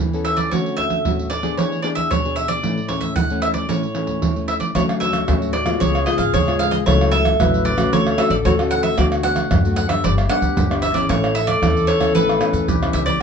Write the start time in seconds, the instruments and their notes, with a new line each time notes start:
0.00 nylon-string guitar E3
0.13 nylon-string guitar B3 C#4 A4, pandeiro
0.25 mandolin E5, pandeiro
0.37 mandolin D5, pandeiro, surdo
0.51 nylon-string guitar D3 A3 C#4 F#4, mandolin C#5, pandeiro, surdo
0.66 pandeiro
0.77 mandolin E5, pandeiro, surdo
0.90 pandeiro, surdo
1.05 nylon-string guitar A2 A3 C#4 F#4, pandeiro, surdo
1.19 pandeiro
1.30 mandolin D5, pandeiro
1.43 nylon-string guitar B3 D4 G#4, pandeiro, surdo
1.57 nylon-string guitar E3, mandolin C#5, pandeiro, surdo
1.72 pandeiro
1.82 nylon-string guitar B3 D4 G#4, mandolin D5, pandeiro
1.95 mandolin E5, pandeiro, surdo
2.11 nylon-string guitar B2, mandolin C#5, pandeiro, surdo
2.25 nylon-string guitar B3 D4 G#4, pandeiro
2.36 mandolin E5, pandeiro
2.48 mandolin D5, pandeiro, surdo
2.63 nylon-string guitar A2 E3 A3 C#4, pandeiro, surdo
2.78 pandeiro
2.89 nylon-string guitar E3 A3 C#4, mandolin C#5, pandeiro, surdo
3.01 mandolin E5, pandeiro, surdo
3.16 nylon-string guitar E3, mandolin F#5, pandeiro, surdo
3.30 nylon-string guitar E3 A3 C#4, pandeiro
3.42 mandolin E5, pandeiro
3.54 mandolin D5, pandeiro, surdo
3.69 nylon-string guitar A2 E3 A3 C#4, mandolin C#5, pandeiro, surdo
3.83 pandeiro
3.95 nylon-string guitar E3 A3 C#4, pandeiro
4.07 pandeiro, surdo
4.22 nylon-string guitar E3, pandeiro, surdo
4.36 nylon-string guitar E3 A3 C#4, pandeiro
4.48 mandolin E5, pandeiro
4.60 mandolin D5, pandeiro, surdo
4.75 upright bass D2, nylon-string guitar D3 F#3 A3 C#4, clarinet F#4, mandolin C#5, pandeiro, tamborim, shaker, surdo
4.89 pandeiro, tamborim, shaker
5.00 mandolin E5, pandeiro, shaker, surdo
5.13 pandeiro, tamborim, shaker, surdo
5.28 upright bass D2, nylon-string guitar A2 F#3 A3 C#4, pandeiro, tamborim, shaker, surdo
5.42 pandeiro, shaker
5.53 mandolin D5, pandeiro
5.66 nylon-string guitar G#3 B3 F4, pandeiro, tamborim, shaker, surdo
5.80 upright bass C#2, nylon-string guitar C#3, clarinet G#4, mandolin C#5, pandeiro, shaker, surdo
5.95 pandeiro, tamborim, shaker
6.06 nylon-string guitar G#3 B3 F4, mandolin D#5, pandeiro, tamborim
6.18 upright bass G#1, mandolin F5, pandeiro, shaker, surdo
6.34 nylon-string guitar G#2, upright bass C#3, mandolin C#5, pandeiro, shaker, surdo
6.48 nylon-string guitar G#3 B3 F4, pandeiro, tamborim, shaker
6.59 mandolin F5, pandeiro, shaker
6.71 mandolin D#5, pandeiro, shaker, surdo
6.86 upright bass C#2, nylon-string guitar C#3 F#3 A3 E4, clarinet A4, mandolin C#5, pandeiro, tamborim, shaker, surdo
7.01 pandeiro, tamborim, shaker
7.12 mandolin E5, pandeiro
7.25 pandeiro, tamborim, shaker, surdo
7.39 upright bass A1, nylon-string guitar C#3 F#3 A3 E4, clarinet B4, pandeiro, tamborim, shaker, surdo
7.54 pandeiro, shaker
7.65 mandolin D5, pandeiro
7.77 nylon-string guitar A3 C#4 F#4, pandeiro, tamborim, shaker, surdo
7.92 upright bass D2, nylon-string guitar D3, clarinet A4, mandolin C#5, pandeiro, shaker, surdo
8.07 pandeiro, tamborim, shaker
8.18 nylon-string guitar A3 C#4 F#4, mandolin E5, pandeiro, tamborim
8.30 upright bass A1, mandolin D5, pandeiro, shaker, surdo
8.45 nylon-string guitar A2 A3 C#4 F#4, upright bass D3, mandolin C#5, pandeiro, shaker, surdo
8.59 nylon-string guitar A3 C#4 F#4, pandeiro, tamborim, shaker
8.71 mandolin F#5, pandeiro
8.83 mandolin E5, pandeiro, shaker, surdo
8.98 upright bass D2, nylon-string guitar D3 A3 B3 F#4, clarinet F#4, mandolin D5, pandeiro, tamborim, shaker, surdo
9.12 pandeiro, tamborim, shaker
9.23 nylon-string guitar A3 B3 F#4, mandolin F#5, pandeiro, surdo
9.36 pandeiro, tamborim, shaker, surdo
9.51 upright bass F#2, nylon-string guitar D3, pandeiro, tamborim, shaker, surdo
9.65 nylon-string guitar A3 B3 F#4, pandeiro, shaker
9.76 mandolin F#5, pandeiro, shaker
9.89 nylon-string guitar G3 B3 D4, mandolin E5, pandeiro, tamborim, shaker, surdo
10.04 upright bass G1, nylon-string guitar G2, clarinet G4, mandolin D5, pandeiro, shaker, surdo
10.18 pandeiro, tamborim, shaker
10.29 nylon-string guitar G3 B3 D4, mandolin F#5, pandeiro, tamborim
10.42 upright bass D2, pandeiro, shaker, surdo
10.56 upright bass G1, nylon-string guitar D3, pandeiro, shaker, surdo
10.70 nylon-string guitar G3 B3 D4, pandeiro, tamborim, shaker
10.82 mandolin E5, pandeiro
10.94 nylon-string guitar E3 B3 C#4, mandolin D5, pandeiro, shaker, surdo
11.02 clarinet G#4
11.09 upright bass A1, nylon-string guitar A2, clarinet A4, mandolin C#5, pandeiro, tamborim, shaker, surdo
11.24 pandeiro, tamborim, shaker
11.35 mandolin E5, pandeiro, shaker
11.47 mandolin D5, pandeiro, tamborim, shaker, surdo
11.62 upright bass E2, nylon-string guitar E3 B3 C#4, pandeiro, tamborim, shaker, surdo
11.77 pandeiro, shaker
11.87 mandolin C#5, pandeiro
12.00 nylon-string guitar E3 B3 C#4, pandeiro, tamborim, shaker, surdo
12.15 upright bass A1, nylon-string guitar A2, mandolin B4, pandeiro, shaker, surdo
12.29 pandeiro, tamborim, shaker
12.41 nylon-string guitar E3 B3 C#4, pandeiro, tamborim, shaker
12.53 upright bass E2, pandeiro, shaker, surdo
12.68 upright bass B1, nylon-string guitar E3, clarinet G4, pandeiro, shaker, surdo
12.82 nylon-string guitar E3 B3 C#4, pandeiro, tamborim, shaker
12.93 upright bass C#2, mandolin E5, pandeiro, shaker
13.06 mandolin D5, pandeiro, shaker, surdo